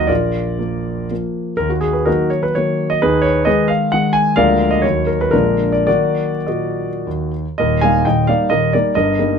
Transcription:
Already playing: D#2 D#3 F#3 A#3 D#4 F#4 A#4 D#5
0.07 A#1 F4 A#4 D5
0.58 F3 A#3
1.11 F3 A#3
1.57 D#2 A#4
1.69 F#4
1.81 G#4
1.93 B4
2.05 D#3 F#3 A#3 D#4 F#4 A#4
2.30 C#5
2.43 B4
2.55 D#3 F#3 A#3 C#5
2.90 D#5
3.02 D#2 D#4 G#4 B4
3.22 C#5
3.45 D#3 G#3 G#4 B4 D#5
3.68 F5
3.92 D#3 G#3 F#5
4.13 G#5
4.36 D2 F3 G#3 A#3 A#4 D5 F5
4.71 D#5
4.82 D#2 D#3 F#3 A#3 C#5
5.07 A#4
5.21 B4
5.31 A#1 D3 G#3 A#3 D4 F4 A#4
5.72 D5
5.87 D#3 F#3 A#3 F#4 A#4 D5
6.47 A#2 F#4 A#4 D#5
7.07 D#2
7.58 D#1 D#2 A#4 D#5
7.81 G3 A#3 D#4 F5 G#5
8.05 D#1 D#2 D#5 G5
8.27 G3 A#3 D#4 D5 F5
8.50 D#1 D#2 A#4 D#5
8.73 G3 A#3 D#4 A#4 D5
8.95 G1 G2 A#4 D#5
9.19 G3 A#3 D#4

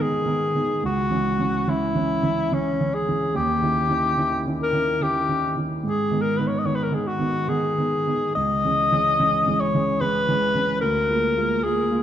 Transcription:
Already playing: G#2 D#3 B3 D#4
0.02 G#4
0.26 D#3 B3 D#4
0.55 D#3 B3 D#4
0.83 C#2 F#4
1.11 E3 C#4
1.39 E3 C#4
1.67 E3 C#4 E4
1.95 E3 C#4
2.23 E3 C#4
2.52 E3 C#4
2.81 E3 C#4
2.94 G#4
3.09 E3 C#4
3.35 D#2 G4
3.62 D#3 C#4 E4
3.89 D#3 C#4 E4
4.17 D#3 C#4 E4
4.47 D#3 C#4 E4
4.62 A#4
4.73 D#3 C#4 E4
5.01 D#3 C#4 E4 G4
5.29 D#3 C#4 E4
5.56 D#3 C#4 E4
5.84 G#2 G#4
6.11 D#3 B3 D#4
6.21 A#4
6.37 D#3 B3 D#4 B4
6.47 C#5
6.59 D#5
6.65 D#3 B3 D#4 C#5
6.75 B4
6.83 A#4
6.92 D#3 B3 D#4 G#4
7.07 F#4
7.19 D#3 B3 D#4
7.48 D#3 B3 D#4 G#4
7.78 D#3 B3 D#4
8.07 D#3 B3 D#4
8.35 C#2 D#5
8.65 E3 G#3 C#4
8.92 E3 G#3 C#4
9.20 E3 G#3 C#4
9.47 E3 G#3 C#4
9.60 C#5
9.75 E3 G#3 C#4
10.00 E3 G#3 C#4 B4
10.29 E3 G#3 C#4
10.55 E3 G#3 C#4
10.81 D2 A#4
11.09 G#3 A#3 F4
11.37 G#3 A#3 F4
11.64 G#3 A#3 F4 G#4
11.91 G#3 A#3 F4

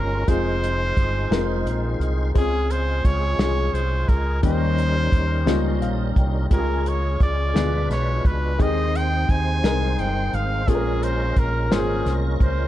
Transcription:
Already playing: G1 A#2 G#3 A#3 C#4 F4 G4 G#4 A#4
0.27 F1 G#3 C4 D#4 F4 G#4 C5, kick, closed hi-hat
0.64 closed hi-hat
0.97 G1, kick, closed hi-hat
1.31 F1 G#3 C4 D#4 F4 A#4, snare, closed hi-hat
1.65 A#1, closed hi-hat
2.00 C2, closed hi-hat
2.35 C#2 C#3 G#3 C4 C#4 F4 G#4, kick, closed hi-hat
2.70 C5, closed hi-hat
3.05 C#2 C#5, kick, closed hi-hat
3.38 C2 G#3 C#4 F4 G#4, snare, closed hi-hat
3.73 C2 C5, closed hi-hat
4.08 C#2 A#4, kick, closed hi-hat
4.43 D#2 D#3 G3 A#3 C#4 D#4 G4 A#4 C5, kick, closed hi-hat
4.78 closed hi-hat
5.12 D#2, kick, closed hi-hat
5.46 C#2 G3 A#3 C#4 D#4 F4, snare, closed hi-hat
5.81 A#1 F5, closed hi-hat
6.16 C2 G5, kick, closed hi-hat
6.50 C#2 C#3 G#3 C#4 F4 G4 G#4 A#4, kick, closed hi-hat
6.58 G#4
6.86 C#5, closed hi-hat
7.20 C#2 D5, kick, closed hi-hat
7.54 D2 B2 G#3 B3 D4 E4 F4 G#4 B4, snare, closed hi-hat
7.62 F4
7.89 B1 C#5, snare, closed hi-hat
8.25 C#2 B4, kick, closed hi-hat
8.58 D#2 D#3 G#3 C4 D#4 G4 G#4 A#4 D#5, kick, closed hi-hat
8.65 C5
8.95 G5, closed hi-hat
9.29 D#2 G#5, kick, closed hi-hat
9.63 C2 G3 G#3 C4 D#4 A#4, snare, closed hi-hat
9.99 G1 G5, closed hi-hat
10.33 G#1 F5, closed hi-hat
10.67 A#1 A#2 G#3 A#3 C#4 F4 G#4 A4 A#4, kick, closed hi-hat
10.75 A#4
11.03 C5, closed hi-hat
11.36 A#1 A#4, kick, closed hi-hat
11.71 G#1 A#3 C#4 F4 G#4 C5, snare, closed hi-hat
12.06 C2, snare, closed hi-hat
12.40 C#2 C5, kick, closed hi-hat

